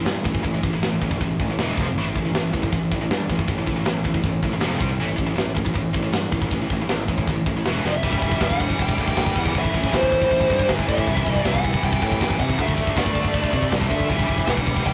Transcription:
0.06 G2 A2 E3, snare, open hi-hat
0.25 A1 A2 E3, kick
0.34 A2 E3, kick
0.43 A1 A2 E3, kick, open hi-hat
0.54 A2 E3
0.63 A1 A2 E3, kick
0.74 A2 E3
0.82 A1 A2 E3, snare, open hi-hat
1.02 A1 A2 E3, kick
1.11 A2 E3, kick
1.21 A1 A2 E3, kick, open hi-hat
1.40 A1 A2 E3, kick
1.50 A2 E3
1.58 E1 E2 B2 E3, snare, open hi-hat
1.78 F1 F2 C3 F3, kick
1.89 F2 C3
1.95 A1 A2 A3, open hi-hat
1.99 E3
2.07 A2 E3
2.16 A1 A2 E3, kick
2.25 A2 E3
2.34 A1 A2 E3, snare, open hi-hat
2.53 A1 A2 E3, kick
2.62 A2 E3, kick
2.72 A1 A2 E3, kick, open hi-hat
2.92 A1 A2 E3, kick
3.01 A2 E3
3.10 G2 A2 E3, snare, open hi-hat
3.30 A1 A2 E3, kick
3.39 A2 E3, kick
3.48 A1 A2 E3, kick, open hi-hat
3.58 A2 E3
3.67 A1 A2 E3, kick
3.76 A2 E3
3.86 A1 A2 E3, snare, open hi-hat
4.04 A1 A2 E3, kick
4.14 A2 E3, kick
4.24 A1 A2 E3, kick, open hi-hat
4.43 A1 A2 E3, kick
4.52 A2 E3
4.60 F1 F2 C3 F3, snare, open hi-hat
4.80 C2 C3 G3 C4, kick
4.90 C3 G3
4.99 A1 A2 E3 A3, open hi-hat
5.08 A2 E3
5.16 A1 A2 E3, kick
5.26 A2 E3
5.36 A1 A2 E3, snare, open hi-hat
5.55 A1 A2 E3, kick
5.65 A2 E3, kick
5.74 A1 A2 E3, kick, open hi-hat
5.94 A1 A2 E3, kick
6.03 A2 E3
6.13 G2 A2 E3, snare, open hi-hat
6.32 A1 A2 E3, kick
6.42 A2 E3, kick
6.51 A1 A2 E3, kick, open hi-hat
6.62 A2 E3
6.70 A1 A2 E3, kick
6.82 A2 E3
6.89 A1 A2 E3, snare, open hi-hat
7.08 A1 A2 E3, kick
7.18 A2 E3, kick
7.27 A1 A2 E3, kick, open hi-hat
7.46 A1 A2 E3, kick
7.57 A2 E3
7.65 E1 E2 B2 E3, snare, open hi-hat
7.85 F1 F2 C3 F3 E5, snare
7.94 F2 C3
8.03 E1 E3 G3, kick, crash
8.11 E3 G3, kick
8.18 E1 E3 G3, kick
8.27 E3 G3
8.31 E3 G3, kick
8.41 E1 E3 G3 F#5, kick, snare, crash
8.50 E3 G3, kick
8.57 E3 G3, kick
8.64 E3 G3
8.70 E3 G3, kick
8.79 E1 E3 G3 G5, kick, crash
8.87 E3 G3, kick
8.94 E3 G3, kick
8.98 D2 E3 G5
9.04 G3, kick
9.09 E3 G3
9.17 D2 E3 G3, kick, snare, crash
9.25 E3 G3, kick
9.31 E3 G3
9.36 E2 F#5, kick
9.40 E3 G3
9.46 E3 G3, kick
9.55 A1 A2 E3, kick, crash
9.59 E5
9.63 A2 E3, kick
9.71 A1 A2 E3, kick
9.78 A2 E3
9.84 A2 E3, kick
9.93 A1 A2 E3 C5, kick, snare, crash
10.01 A2 E3, kick
10.08 A2 E3, kick
10.16 A2 E3
10.22 A2 E3, kick
10.31 A1 A2 E3, kick, crash
10.39 A2 E3, kick
10.47 G2 A2 E3, kick
10.54 A2 E3
10.59 A2 E3, kick
10.69 G1 A2 E3, kick, snare, crash
10.76 A2 E3, kick
10.84 A2 E3
10.88 A2 E3 E5, kick
10.98 A2 E3, kick
11.07 C2 C3 E3, kick, crash
11.15 C3 E3, kick
11.23 C2 C3 E3, kick
11.30 C3 E3 D5
11.36 C3 E3, kick
11.45 C2 C3 E3 F#5, kick, snare, crash
11.53 C3 E3, kick
11.61 C3 E3, kick
11.68 C3 E3
11.74 C3 E3, kick
11.83 C2 C3 E3 G5, kick, crash
11.90 C3 E3, kick
11.99 A2 C3 E3, kick
12.03 C3 E3 G5
12.12 C3 E3, kick
12.21 A1 C3 E3, kick, snare, crash
12.28 C3 E3, kick
12.36 C3 E3 F#5, kick
12.44 C3 E3
12.49 C3 E3, kick
12.59 D2 D3 A3 E5, kick, crash
12.66 D3 A3, kick
12.74 D3 A3, kick
12.78 D2 D3
12.82 A3
12.87 D3 A3, kick
12.96 D2 D3 A3 D5, kick, snare, crash
13.04 D3 A3, kick
13.11 D3 A3
13.15 kick
13.19 D3 A3
13.25 D3 A3, kick
13.34 D2 D3 A3, kick, crash
13.41 D3 A3, kick
13.49 C3 D3 A3, kick
13.58 D3 A3
13.62 D3 A3, kick
13.72 C2 D3 A3, kick, snare, crash
13.80 D3 A3, kick
13.87 D3 A3 E5, kick
13.95 D3 A3
14.00 D3 A3, kick
14.09 E1 E3 G3, kick, crash
14.17 E3 G3, kick
14.24 E3 G3
14.29 E1 E3 G3, kick
14.38 E3 G3, kick
14.47 E1 E3 G3 F#5, kick, snare, crash
14.55 E3 G3, kick
14.62 E3 G3
14.67 E3, kick
14.71 G3
14.77 E3 G3, kick
14.84 E1 E3 G3 G5, kick, crash

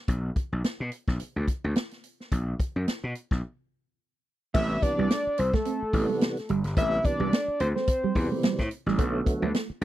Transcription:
0.08 B1, kick, closed hi-hat
0.36 kick, closed hi-hat
0.52 B1
0.64 snare, closed hi-hat
0.80 B2
0.92 closed hi-hat
1.08 B1, kick, snare
1.20 closed hi-hat
1.36 D2
1.48 kick, closed hi-hat
1.64 D2
1.76 snare, closed hi-hat
1.91 snare, closed hi-hat
2.04 closed hi-hat
2.20 snare
2.32 B1, kick, closed hi-hat
2.60 kick, closed hi-hat
2.76 F#2
2.88 muted slap bass stroke, snare, closed hi-hat
3.04 B2
3.15 closed hi-hat
3.31 B1, kick, snare
4.54 A1 C3 E3 G3 A3 B3 E5, kick, crash
4.82 D5, muted clean electric guitar stroke, kick, closed hi-hat
4.98 C2 G3
5.10 A3, snare, closed hi-hat
5.27 muted slap bass stroke
5.38 C2 C5, muted clean electric guitar stroke, closed hi-hat
5.54 A3 A4, kick, snare
5.65 C4, closed hi-hat
5.82 muted slap bass stroke
5.93 A1 B2 E3 G3 B3, muted clean electric guitar stroke, kick, open hi-hat
5.99 C3
6.10 A3
6.21 snare, closed hi-hat
6.37 snare, closed hi-hat
6.49 G1 G3, closed hi-hat
6.64 G1, snare, closed hi-hat
6.76 A1 C3 E3 G3 A3 B3 E5, kick, closed hi-hat
7.05 D5, muted clean electric guitar stroke, kick, closed hi-hat
7.20 C2 G3
7.32 A3, snare, closed hi-hat
7.48 muted slap bass stroke
7.60 D2 C5, muted clean electric guitar stroke, closed hi-hat
7.75 A3 C5, snare
7.88 kick, closed hi-hat
8.04 G3, muted slap bass stroke
8.15 E2 B2 E3 G3, kick, open hi-hat
8.22 C3
8.32 A3
8.43 G3, snare, closed hi-hat
8.59 A2, muted clean electric guitar stroke, kick, snare, closed hi-hat
8.71 closed hi-hat
8.86 A1 G3, snare
8.98 B1 D3 F#3 A3 B3, kick, closed hi-hat
9.26 muted clean electric guitar stroke, kick, closed hi-hat
9.42 D2 F#3
9.54 A3, snare, closed hi-hat
9.70 muted slap bass stroke

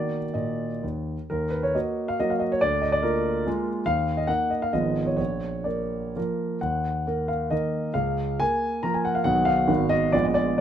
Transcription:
Already playing: D#3 A#3 F#4 D5
0.34 A#2 D#5
0.83 D#2
1.30 D#2 A#4
1.50 B4
1.63 C#5
1.75 A#3 F#4 D#5
2.08 F5
2.20 F#3 A#3 F#4 D#5
2.30 F5
2.39 D#5
2.52 C#5
2.61 D2 D5
2.82 D#5
2.92 D5
3.03 A#3 F4 A#4
3.46 G#3 A#3 F4
3.86 D#2 F5
4.17 D#5
4.27 A#3 D#4 F#5
4.50 D#5
4.62 F5
4.73 G#1 F3 B3 F4 D#5
5.06 C#5
5.17 A#1 C#5
5.64 A#3 A#4 D5
6.16 F3 A#3 A#4
6.61 D#2 F#5
7.07 A#3 A#4
7.28 F5
7.50 D#3 A#3 A#4 D#5
7.94 C#2 F5
8.40 A#3 A#4 G#5
8.83 F3 A#3 A#4 A#5
8.94 G#5
9.05 F#5
9.15 F5
9.24 B1 D#3 B3 F#4 F#5
9.45 F5
9.68 G#1 D#3 B3 F#4
9.89 D#5
10.12 A#1 G#3 B3 F4 D5
10.23 D#5
10.34 D5

